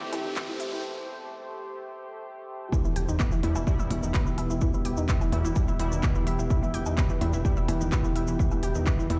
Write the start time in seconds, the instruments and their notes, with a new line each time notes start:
Already playing: synth drone E2 E3, analog polysynth C3 A3 G4, ambient pad A3 G4 C5, string section C4 G4 E5 A5, riser
0.01 detuned saw bass A1, synth arpeggio sound E4
0.13 detuned saw bass A1, synth arpeggio sound E3, closed hi-hat, percussion blips, low woodblock
0.25 detuned saw bass A1, synth arpeggio sound D#3
0.36 synth arpeggio sound B3, kick, clap
0.48 detuned saw bass A1, synth arpeggio sound E3
0.60 detuned saw bass A1, synth arpeggio sound E4, closed hi-hat
0.72 detuned saw bass A1, synth arpeggio sound E3
2.72 synth arpeggio sound E3 E4, ambient pad E4 B4 G5, kick, impact, cabasa, low woodblock
2.85 detuned saw bass E1, synth arpeggio sound E3 E4, cabasa
2.96 detuned saw bass E1, synth arpeggio sound G4 G5, closed hi-hat
3.08 detuned saw bass E2, synth arpeggio sound D#3 D#4, cabasa
3.20 synth arpeggio sound B3 B4, kick, clap, cabasa
3.31 detuned saw bass E1, synth arpeggio sound E3 E4, cabasa
3.43 detuned saw bass E2, analog polysynth B2 G3 E4, synth arpeggio sound E3 E4, closed hi-hat, percussion blips
3.55 detuned saw bass E1, synth arpeggio sound E3 E4, cabasa, low woodblock
3.67 analog polysynth B2 G3 E4, synth arpeggio sound G3 G4, kick, cabasa
3.79 detuned saw bass E1, synth arpeggio sound E4 E5, cabasa
3.91 detuned saw bass E1, synth arpeggio sound E3 E4, closed hi-hat, percussion blips
4.03 detuned saw bass E1, synth arpeggio sound D#3 D#4, cabasa
4.14 synth arpeggio sound B3 B4, kick, clap, cabasa
4.26 detuned saw bass E1, synth arpeggio sound E3 E4, cabasa
4.38 detuned saw bass E1, synth arpeggio sound E4 E5, closed hi-hat, low woodblock
4.50 detuned saw bass E1, synth arpeggio sound E3 E4, cabasa
4.61 synth arpeggio sound E3 E4, kick, cabasa
4.74 detuned saw bass E1, synth arpeggio sound E3 E4, cabasa
4.85 detuned saw bass E1, synth arpeggio sound G4 G5, closed hi-hat
4.97 detuned saw bass E2, synth arpeggio sound D#3 D#4, cabasa
5.09 synth arpeggio sound B3 B4, kick, clap, cabasa
5.21 detuned saw bass E1, synth arpeggio sound E3 E4, cabasa, low woodblock
5.32 detuned saw bass E2, analog polysynth B2 G3 E4, synth arpeggio sound E3 E4, closed hi-hat, percussion blips
5.45 detuned saw bass E1, synth arpeggio sound E3 E4, cabasa
5.56 synth arpeggio sound G3 G4, kick, percussion blips, cabasa
5.68 detuned saw bass E1, synth arpeggio sound E4 E5, cabasa
5.80 detuned saw bass E1, analog polysynth B2 G3 E4, synth arpeggio sound E3 E4, closed hi-hat
5.92 detuned saw bass E1, synth arpeggio sound D#3 D#4, cabasa
6.03 synth arpeggio sound B3 B4, kick, clap, cabasa, low woodblock
6.15 detuned saw bass E1, synth arpeggio sound E3 E4, cabasa
6.27 detuned saw bass E1, synth arpeggio sound E4 E5, closed hi-hat
6.39 detuned saw bass E1, synth arpeggio sound E3 E4, cabasa
6.50 synth arpeggio sound E3 E4, kick, cabasa
6.63 detuned saw bass E1, synth arpeggio sound E3 E4, cabasa
6.74 detuned saw bass E1, synth arpeggio sound G4 G5, closed hi-hat
6.86 detuned saw bass E2, synth arpeggio sound D#3 D#4, cabasa, low woodblock
6.98 synth arpeggio sound B3 B4, kick, clap, cabasa
7.09 detuned saw bass E1, synth arpeggio sound E3 E4, cabasa
7.21 detuned saw bass E2, analog polysynth B2 G3 E4, synth arpeggio sound E3 E4, closed hi-hat, percussion blips
7.33 detuned saw bass E1, synth arpeggio sound E3 E4, cabasa
7.45 analog polysynth B2 G3 E4, synth arpeggio sound G3 G4, kick, cabasa
7.57 detuned saw bass E1, synth arpeggio sound E4 E5, cabasa
7.68 detuned saw bass E1, synth arpeggio sound E3 E4, closed hi-hat, percussion blips, low woodblock
7.81 detuned saw bass E1, synth arpeggio sound D#3 D#4, cabasa
7.92 synth arpeggio sound B3 B4, kick, clap, cabasa
8.04 detuned saw bass E1, synth arpeggio sound E3 E4, cabasa
8.16 detuned saw bass E1, synth arpeggio sound E4 E5, closed hi-hat
8.27 detuned saw bass E1, synth arpeggio sound E3 E4, cabasa
8.39 synth arpeggio sound E3 E4, kick, cabasa
8.51 detuned saw bass E1, synth arpeggio sound E3 E4, cabasa, low woodblock
8.63 detuned saw bass E1, synth arpeggio sound G4 G5, closed hi-hat
8.75 detuned saw bass E2, synth arpeggio sound D#3 D#4, cabasa
8.86 synth arpeggio sound B3 B4, kick, clap, cabasa
8.99 detuned saw bass E1, synth arpeggio sound E3 E4, cabasa
9.10 detuned saw bass E2, analog polysynth B2 G3 E4, synth arpeggio sound E3 E4, closed hi-hat, percussion blips